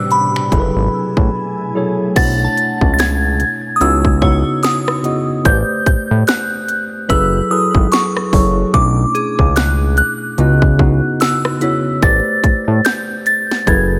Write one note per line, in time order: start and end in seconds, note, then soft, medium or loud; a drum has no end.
0.00 0.54 A2 medium
0.00 0.50 B2 medium
0.00 0.50 C3 medium
0.00 0.54 G3 medium
0.00 0.50 D4 medium
0.00 0.53 D4 medium
0.00 0.50 G4 medium
0.00 0.54 B4 medium
0.00 0.54 C5 medium
0.00 0.53 D5 medium
0.00 0.12 E6 medium
0.11 1.72 B5 medium
0.11 closed hi-hat medium
0.36 finger snap medium
0.51 0.70 F#1 loud
0.51 2.15 B2 medium
0.51 1.67 F#3 medium
0.51 2.15 A3 medium
0.51 1.67 E4 medium
0.51 2.15 E4 medium
0.51 1.67 G#4 medium
0.51 1.68 A4 medium
0.51 0.60 A#4 medium
0.51 2.15 G#5 medium
0.51 kick medium
0.51 closed hi-hat medium
0.60 1.71 B4 medium
0.76 0.89 G#1 medium
1.17 1.30 A1 medium
1.17 kick medium
1.75 2.13 F#3 medium
1.75 2.14 E4 medium
1.75 2.14 G#4 medium
1.75 2.14 A4 medium
1.75 2.15 C#5 medium
2.15 2.48 B1 loud
2.15 3.70 B2 medium
2.15 3.70 A3 medium
2.15 3.70 D4 medium
2.15 3.71 E4 medium
2.15 2.25 C5 medium
2.15 4.06 F#5 medium
2.15 2.92 A6 loud
2.15 kick loud
2.15 closed hi-hat medium
2.15 crash loud
2.25 3.74 C#5 medium
2.44 4.28 A5 medium
2.57 closed hi-hat medium
2.81 3.44 C#2 medium
2.81 kick medium
2.94 2.99 A6 medium
2.99 3.71 G#6 loud
2.99 snare loud
2.99 closed hi-hat medium
3.40 closed hi-hat medium
3.76 4.19 C#3 medium
3.76 3.81 D#6 medium
3.81 4.44 C#2 medium
3.81 4.19 B3 medium
3.81 4.20 D#4 medium
3.81 4.19 E4 medium
3.81 4.20 F#4 medium
3.81 4.66 E6 loud
3.81 closed hi-hat medium
4.05 kick medium
4.21 4.98 C#3 medium
4.21 4.98 B3 medium
4.21 4.99 D#4 medium
4.21 4.99 E4 medium
4.21 4.99 F#4 medium
4.21 5.82 C#5 medium
4.21 kick medium
4.63 5.24 D#6 medium
4.63 snare loud
4.63 closed hi-hat medium
4.88 cross-stick loud
5.03 5.42 C#3 medium
5.03 5.42 B3 medium
5.03 5.43 E4 medium
5.03 5.43 F#4 medium
5.03 5.43 D#5 medium
5.03 closed hi-hat medium
5.44 5.63 A1 medium
5.44 6.98 A3 medium
5.44 6.99 G4 medium
5.44 6.99 B4 medium
5.44 6.99 C5 medium
5.44 7.00 D5 medium
5.44 5.86 G6 loud
5.44 kick loud
5.44 closed hi-hat medium
5.86 5.96 A2 soft
5.86 6.29 G6 loud
5.86 kick medium
5.86 closed hi-hat medium
6.11 6.24 A2 loud
6.27 7.12 F#6 loud
6.27 snare loud
6.27 closed hi-hat medium
6.69 closed hi-hat medium
7.09 7.41 F#1 loud
7.09 7.47 F#3 medium
7.09 7.48 E4 medium
7.09 7.48 G#4 medium
7.09 7.48 A4 medium
7.09 8.99 B4 medium
7.09 7.49 B4 medium
7.09 7.52 E6 loud
7.09 kick medium
7.09 closed hi-hat medium
7.50 8.27 F#3 medium
7.50 8.28 E4 medium
7.50 8.28 G#4 medium
7.50 8.28 A4 medium
7.50 8.28 B4 medium
7.50 7.65 D#6 medium
7.75 7.88 G#1 loud
7.75 kick medium
7.92 8.53 C#6 medium
7.92 snare loud
7.92 closed hi-hat medium
8.17 cross-stick medium
8.32 8.64 F#1 medium
8.32 8.71 F#3 medium
8.32 8.71 E4 medium
8.32 8.72 G#4 medium
8.32 8.72 A4 medium
8.32 8.72 C#5 medium
8.32 kick loud
8.32 open hi-hat medium
8.73 9.05 B1 loud
8.73 10.27 B2 medium
8.73 10.27 A3 medium
8.73 10.28 C#4 medium
8.73 10.28 D4 medium
8.73 10.28 E4 medium
8.73 9.58 D6 loud
8.73 kick loud
8.73 closed hi-hat medium
9.15 10.75 G#4 medium
9.15 closed hi-hat medium
9.39 10.02 C#2 medium
9.39 kick medium
9.56 9.70 F#6 loud
9.56 snare loud
9.56 closed hi-hat medium
9.97 11.24 F#6 loud
9.97 closed hi-hat medium
10.38 11.01 C#2 loud
10.38 10.76 C#3 medium
10.38 10.77 B3 medium
10.38 10.77 E4 medium
10.38 10.77 F#4 medium
10.38 10.78 D#5 medium
10.38 closed hi-hat medium
10.62 kick medium
10.79 11.56 C#3 medium
10.79 11.56 B3 medium
10.79 11.57 D#4 medium
10.79 11.57 F#4 medium
10.79 kick medium
10.86 11.60 E4 medium
11.20 11.82 E6 medium
11.20 snare loud
11.20 closed hi-hat medium
11.45 cross-stick loud
11.61 12.00 C#3 medium
11.61 12.00 B3 medium
11.61 12.40 E4 medium
11.61 12.00 E4 medium
11.61 12.01 F#4 medium
11.61 12.01 C#5 medium
11.61 closed hi-hat medium
12.02 12.21 A1 loud
12.02 13.56 A3 medium
12.02 13.56 G4 medium
12.02 13.57 B4 medium
12.02 13.57 C5 medium
12.02 13.57 D5 medium
12.02 12.87 A6 medium
12.02 kick loud
12.02 closed hi-hat medium
12.44 12.53 A2 soft
12.44 kick medium
12.44 closed hi-hat medium
12.68 12.81 A2 loud
12.85 12.99 G6 loud
12.85 snare loud
12.85 closed hi-hat medium
13.26 13.69 A6 loud
13.26 closed hi-hat medium
13.51 snare medium
13.66 13.99 F#1 loud
13.66 13.99 F#3 medium
13.66 13.99 E4 medium
13.66 13.99 G#4 medium
13.66 13.99 A4 medium
13.66 13.99 B4 medium
13.66 13.99 G#6 medium
13.66 kick medium
13.66 closed hi-hat medium